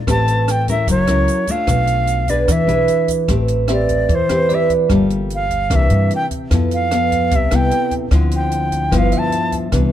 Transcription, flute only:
0.10 0.52 A5 medium
0.51 0.69 G5 medium
0.71 0.88 E5 medium
0.91 1.52 C#5 medium
1.51 2.31 F5 medium
2.30 2.53 D5 medium
2.52 3.11 E5 medium
3.73 4.16 D5 medium
4.15 4.56 C5 medium
4.55 4.72 E5 medium
5.35 5.77 F5 medium
5.76 6.13 E5 medium
6.16 6.26 G5 medium
6.74 7.37 F5 medium
7.36 7.57 E5 medium
7.55 7.94 G5 medium
8.35 8.99 G5 medium
8.98 9.20 F5 medium
9.18 9.55 A5 medium

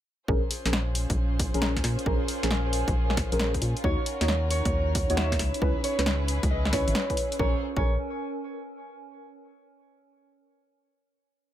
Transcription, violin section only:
0.28 5.36 C#4 medium
0.28 5.36 F4 medium
0.28 3.80 G#4 medium
0.28 3.80 C5 medium
3.84 5.38 F#4 medium
3.84 5.38 A#4 medium
5.39 7.38 C#4 medium
5.39 7.38 E4 medium
5.39 7.38 G#4 medium
5.39 7.38 B4 medium
7.40 7.60 C#4 medium
7.40 7.60 F4 medium
7.40 7.60 G#4 medium
7.40 7.60 C5 medium

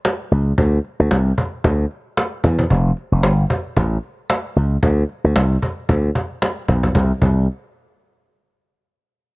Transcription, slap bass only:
0.31 0.52 C#2 medium
0.58 0.78 D2 medium
1.00 1.08 D2 loud
1.11 1.31 C2 medium
1.64 1.84 D2 medium
2.44 2.64 E2 medium
2.70 2.90 F1 loud
3.12 3.24 F1 loud
3.24 3.44 G1 loud
3.77 3.97 A1 medium
4.56 4.76 C#2 medium
4.83 5.03 D2 loud
5.24 5.33 D2 medium
5.36 5.56 C2 loud
5.89 6.09 D2 loud
6.69 6.89 B1 medium
6.95 7.11 C2 loud
7.22 7.46 C2 medium

